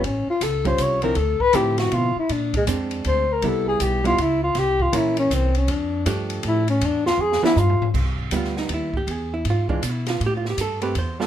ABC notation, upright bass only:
X:1
M:3/4
L:1/8
Q:"Swing" 1/4=159
K:C
V:1 name="Upright bass" clef=bass
A,,, z ^C,,2 ^B,,,2 | D,, z A,,2 B,, z | _B,,2 F,,2 D,,2 | C,,2 B,,,2 ^C,,2 |
C,,2 _B,,,2 C,,2 | F,,2 G,,2 A,,2 | E,,2 F,, z G,, z | C,,2 D,,2 _E,,2 |
E,,2 ^G,,2 B,,2 | A,,2 G,,2 E,,2 |]